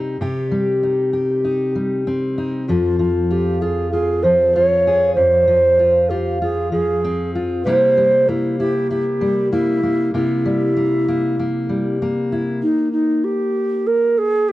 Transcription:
Already playing: C3 G3 C4 D#4 G4
0.21 C3 G4
0.52 G3
0.83 D#4
1.13 G4
1.44 D#4
1.75 G3
2.07 C4
2.38 D#4
2.68 F2 F3 F4
2.99 F3
3.31 F4 G4
3.61 F4 G#4
3.91 F4 G#4
4.23 F3 C5
4.53 F4 C5
4.65 C#5
4.87 G#4
5.15 F2 C5
5.48 F3
5.79 F4
6.09 F4 G4
6.42 F4 G#4
6.72 F3 G#4
7.04 C4
7.35 F4
7.64 C3 G3 A#3 C5
7.68 E4 A#4
7.97 G3
8.28 A#3 E4
8.59 E4 G4
8.90 E4 G4
9.21 G3
9.52 A#3 E4
9.83 A#3
10.14 C3 A#3 E4
10.45 G3
10.77 A#3
11.08 A#3
11.39 A#3
11.69 G3
12.02 A#3
12.32 E4
12.62 D#4
12.92 D#4
13.24 G4
13.86 A#4
14.18 G#4
14.48 G4

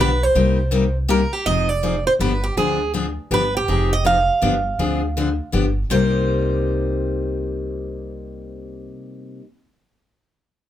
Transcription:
Already playing: B1
0.01 B4
0.23 C5
0.35 C2 C3 G3 A#3 D#4 G4
0.71 C3 G3 A#3 D#4 G4
1.08 C3 G3 A#3 D#4 G4 A#4
1.33 G4
1.46 F1 F3 C4 D#4 G#4 D#5
1.69 D5
1.83 F3 C4 D#4 G#4
2.07 C5
2.19 G1 D3 F3 B3 D4 G4 B4
2.44 G4
2.57 D2 D3 F3 C4 D4 G#4
2.94 D3 F3 C4 D4 G#4
3.31 G1 D3 F3 B3 D4 G4 B4
3.57 G4
3.68 F1 F3 C4 D#4 G#4
3.93 D#5
4.05 F3 C4 D#4 G#4 F5
4.42 G1 D3 F3 B3 D4 G4
4.79 D2 D3 F3 C4 D4 G#4
5.17 D3 F3 C4 D4 G#4
5.52 G1 D3 F3 B3 D4 G4
5.90 C2 C3 G3 A#3 D#4 G4 C5

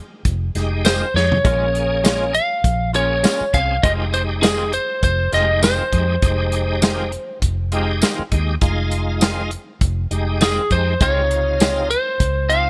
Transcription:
0.25 F1, kick, closed hi-hat
0.55 F1 G#3 D#4 G4, snare, closed hi-hat
0.85 D#3 G#3 C4 F4 C5, snare, closed hi-hat, tambourine
1.14 F2 G#3 D#4 G4 C#5, snare
1.32 floor tom
1.45 A#1 G#3 A#3 C#4 F4 G#4, kick, closed hi-hat
1.75 closed hi-hat
2.04 G#3 C#4 F4, snare, closed hi-hat, tambourine
2.34 F5, closed hi-hat
2.64 A#1, kick, closed hi-hat
2.93 A#3 C#4 F4 G#4 C#5, closed hi-hat
3.24 G#3 C#4 F4, snare, closed hi-hat, tambourine
3.41 muted fingered electric bass stroke
3.54 C2 C4 C#4 G#4 F5, kick, closed hi-hat
3.83 F1 D#3 G#3 C4 D#4 F4 G4 D#5, kick, closed hi-hat
4.14 C5, closed hi-hat
4.43 D#3 G#3 C4 F4 G#4, snare, closed hi-hat, tambourine
4.73 C5, closed hi-hat
5.03 F1 C5, kick, closed hi-hat
5.32 F1 G#3 C4 D#4 F4 G4 D#5, snare, closed hi-hat
5.62 D#3 G#3 C4 F4 C5, snare, closed hi-hat, tambourine
5.92 F2 G#3 D#4 G4, kick, closed hi-hat
6.22 F1 G#3 D#4 G4, kick, closed hi-hat
6.52 closed hi-hat
6.82 D#3 G#3 C4 F4, snare, closed hi-hat, tambourine
7.12 closed hi-hat
7.42 F1, kick, closed hi-hat
7.72 G#3 C4 D#4 F4 G4, closed hi-hat
8.02 D#3 G#3 C4 F4, snare, closed hi-hat, tambourine
8.19 muted fingered electric bass stroke
8.32 D#2 G#3 D#4 G4, kick, closed hi-hat
8.61 F1 G#3 D#4 F4, kick, closed hi-hat
8.91 closed hi-hat
9.21 D#3 G#3 C4 F4, snare, closed hi-hat, tambourine
9.51 closed hi-hat
9.81 F1, kick, closed hi-hat
10.11 F1 G#3 D#4 G4, closed hi-hat
10.41 D#3 G#3 C4 F4 G#4, snare, closed hi-hat, tambourine
10.71 F2 G#3 D#4 G4 C5, kick, closed hi-hat
11.00 C#2 C3 G#3 C4 D#4 F4 C#5, kick, closed hi-hat
11.31 closed hi-hat
11.60 G#3 C4 F4, snare, closed hi-hat, tambourine
11.90 C5, closed hi-hat
12.20 C#2, kick, closed hi-hat
12.49 C4 D#4 F4 F5, closed hi-hat
12.53 C4

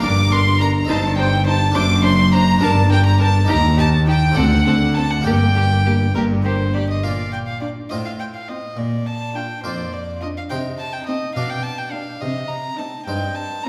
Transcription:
0.00 G1 G2 D4 A#4 D5 D6
0.30 D4 A#4 C6
0.60 D4 A#4 A#5
0.85 D#4 A4 C5
0.89 G1 G2 C5 A5
1.17 D#4 C5 G5
1.45 D#4 C5 A5
1.72 F#2 D4 A4 C5 D6
1.76 F#1 F#2 D6
2.03 D4 C5 C6
2.33 D4 C5 A#5
2.58 G1 D4 G4 A#4
2.62 G2 A#4 A5
2.91 D4 A#4 G5
3.06 A#5
3.20 D4 A#4 A5
3.44 D#4 G4 A#4
3.48 D#2 D#4 G4 A#5
3.77 D#4 G4 A5
4.08 D#4 G4 G5
4.31 C4 A4 D5
4.36 D2 C4 A4 F#5
4.66 C4 A4
4.95 C4 A4 A5
5.11 F#5
5.21 G2 A#3 G4 D5 G5
5.25 G1 G2 A#3 G4 G5
5.55 A#3 G4
5.85 A#3 G4
6.14 G1 G2 A#3 G4 A#4
6.44 A#3 G4 C5
6.74 A#3 G4 D5
6.90 D#5
7.03 A#2 A#3 F4 D5 F5
7.33 G5
7.47 F5
7.61 D4 F4 A#4 D5
7.89 A2 C4 F4 C5 D#5
8.05 F5
8.20 G5
8.35 F5
8.48 C4 F4 C5 D#5
8.77 A#2 D5
9.06 A5
9.35 D4 F4 A#4 G5
9.64 F2 A#3 F4 C5 D5
9.93 D5
10.22 D4 F4 A#4 D#5
10.37 F5
10.50 C3 D#4 C5 G5
10.78 A5
10.93 G5
11.06 C4 D#4 G4 D#5
11.35 B2 D4 D5 F5
11.50 G5
11.63 A5
11.78 G5
11.92 D4 G4 F5
12.21 C3 D#5
12.48 A#5
12.78 C4 D#4 G4 A5
13.06 G2 D#4 C5 G5
13.35 A5
13.63 C4 D#4 G4 A#5

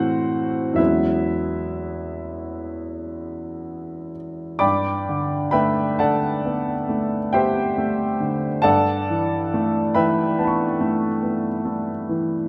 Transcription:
Already playing: A2 E3 A3 C4 E4 F#4 C5 F#5
0.73 E2 F#3 G#3 B3 E4 E5
0.78 C#4 B4
4.59 G2 D5 G5 B5 D6
5.09 D3
5.51 A3 B4 E5 G5 B5
5.99 D3 A4 D5 F#5 A5
6.45 B3
6.89 A3
7.33 B3 G4 C5 E5 G5
7.78 A3
8.20 D3
8.62 G2 A4 D5 F#5 A5
9.10 E3
9.54 A3
9.95 E3 B4 E5 G5 B5
10.39 B3 A5
10.44 B5 C#6
10.81 A3
11.23 B3
11.65 A3
12.09 E3

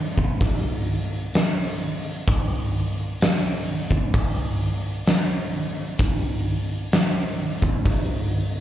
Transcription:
0.18 kick
0.40 kick, open hi-hat
1.34 snare, open hi-hat
2.28 kick, open hi-hat
3.21 snare, open hi-hat
3.91 kick
4.14 kick, open hi-hat
5.06 snare, open hi-hat
5.98 kick, open hi-hat
6.92 snare, open hi-hat
7.62 kick
7.85 kick, open hi-hat

